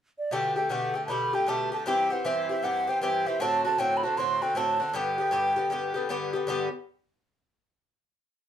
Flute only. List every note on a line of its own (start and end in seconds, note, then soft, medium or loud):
0.18 0.34 D5 medium
0.32 0.56 G5 medium
0.57 0.73 G5 medium
0.71 0.97 F#5 medium
0.96 1.06 G5 medium
1.06 1.11 A5 medium
1.06 1.36 B5 medium
1.35 1.50 G5 medium
1.49 1.72 A5 medium
1.73 1.86 A5 medium
1.87 2.13 G5 medium
2.12 2.27 F#5 medium
2.25 2.49 E5 medium
2.50 2.65 E5 medium
2.64 2.90 F#5 medium
2.89 3.02 G5 medium
3.03 3.29 G5 medium
3.27 3.42 E5 medium
3.41 3.65 A5 loud
3.65 3.81 A5 medium
3.79 3.99 G5 medium
3.97 4.05 B5 medium
4.04 4.19 A5 medium
4.18 4.44 C6 medium
4.42 4.59 G5 medium
4.57 4.89 A5 medium
4.89 4.97 A5 medium
4.96 6.10 G5 medium